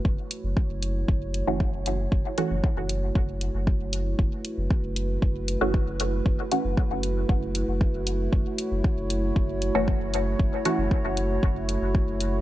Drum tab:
HH |-x-x-x-x|-x-x-x-x|-x-x-x-x|-x-x-x-x|
BD |o-o-o-o-|o-o-o-o-|o-o-o-o-|o-o-o-o-|

HH |-x-x-x-x|-x-x-x-x|
BD |o-o-o-o-|o-o-o-o-|